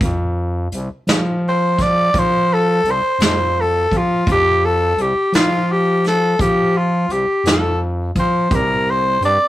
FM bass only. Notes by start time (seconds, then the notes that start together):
0.01 F2
0.72 C2
1.07 F3
2.14 F3
2.84 C2
3.19 F2
3.91 F3
4.27 F2
4.97 C2
5.33 F3
6.39 F3
7.09 C2
7.44 F2
8.15 F3
8.51 C2
9.21 G2